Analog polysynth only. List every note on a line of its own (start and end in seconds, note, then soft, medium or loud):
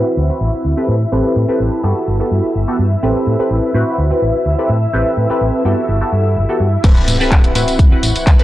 0.00 0.27 C4 loud
0.00 0.27 E4 medium
0.00 0.27 F#4 medium
0.00 0.27 B4 loud
0.29 0.74 C4 medium
0.29 0.74 E4 medium
0.29 0.74 F#4 medium
0.29 0.75 B4 medium
0.77 0.95 C4 medium
0.77 0.95 G4 medium
0.77 0.95 A4 medium
0.77 0.95 B4 medium
1.12 1.46 C4 medium
1.12 1.46 G4 medium
1.12 1.46 A4 medium
1.12 1.46 B4 loud
1.48 1.81 C4 medium
1.48 1.81 G4 medium
1.48 1.81 A4 medium
1.48 1.81 B4 loud
1.83 2.17 B3 medium
1.83 2.17 F#4 medium
1.83 2.17 G4 medium
1.83 2.17 A4 loud
2.20 2.65 B3 medium
2.20 2.65 F#4 medium
2.20 2.65 G4 medium
2.20 2.65 A4 medium
2.68 2.86 B3 medium
2.68 2.86 F#4 medium
2.68 2.86 G4 medium
2.68 2.86 A4 loud
3.03 3.36 C4 loud
3.03 3.36 G4 medium
3.03 3.36 A4 medium
3.03 3.37 B4 loud
3.39 3.72 C4 medium
3.39 3.72 G4 medium
3.39 3.72 A4 medium
3.39 3.72 B4 loud
3.74 4.08 C4 loud
3.74 4.08 E4 medium
3.74 4.08 F#4 medium
3.74 4.08 B4 loud
4.10 4.55 C4 medium
4.10 4.55 E4 medium
4.10 4.56 F#4 medium
4.10 4.56 B4 medium
4.58 4.76 C4 medium
4.58 4.76 G4 medium
4.58 4.76 A4 medium
4.58 4.76 B4 loud
4.93 5.27 C4 medium
4.93 5.27 G4 medium
4.93 5.27 A4 medium
4.93 5.27 B4 loud
5.30 5.62 C4 medium
5.30 5.62 G4 medium
5.30 5.62 A4 medium
5.30 5.63 B4 loud
5.65 5.98 B3 medium
5.65 5.98 F#4 medium
5.65 5.99 G4 medium
5.65 5.99 A4 loud
6.01 6.46 B3 medium
6.01 6.46 F#4 medium
6.01 6.46 G4 medium
6.01 6.46 A4 medium
6.49 6.67 B3 medium
6.49 6.67 F#4 medium
6.49 6.67 G4 medium
6.49 6.67 A4 medium
6.84 7.17 C4 loud
6.84 7.17 G4 medium
6.84 7.18 A4 medium
6.84 7.18 B4 loud
7.20 7.53 C4 loud
7.20 7.53 G4 medium
7.20 7.53 A4 medium
7.20 7.53 B4 loud
7.55 7.89 C4 loud
7.55 7.89 E4 medium
7.55 7.89 F#4 medium
7.55 7.89 B4 loud
7.92 8.36 C4 medium
7.92 8.36 E4 medium
7.92 8.37 F#4 medium
7.92 8.37 B4 medium
8.39 8.44 C4 medium
8.39 8.44 G4 medium
8.39 8.44 A4 medium
8.39 8.44 B4 loud